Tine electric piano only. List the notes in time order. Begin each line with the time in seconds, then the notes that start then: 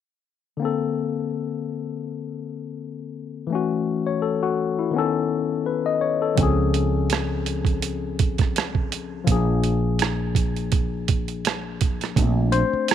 0.57 D3 A#3
0.62 C4 A4
3.47 E3 A3
3.52 C#4 F#4
4.07 C#5
4.22 A4
4.43 F#4
4.79 E4
4.91 D#3 B3
4.96 C#4 A4
5.66 B4
5.86 D#5
6.01 C#5
6.22 A4
6.35 F3 C4
6.40 C#4 G#4
9.24 F3 A#3
9.29 C#4 G#4
9.36 D4
12.17 A3 C4 D4
12.52 C5